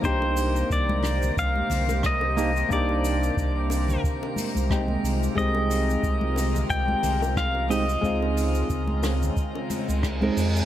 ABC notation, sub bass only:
X:1
M:4/4
L:1/16
Q:"Swing 16ths" 1/4=90
K:Cm
V:1 name="Sub bass" clef=bass
C,,4 C,,4 C,, z C,,6 | C,,4 C,,4 z3 C,,3 C,, z | C,,4 C,,4 C,, z C,,6 | _D,,4 D,,4 z3 D,,3 F,, z |]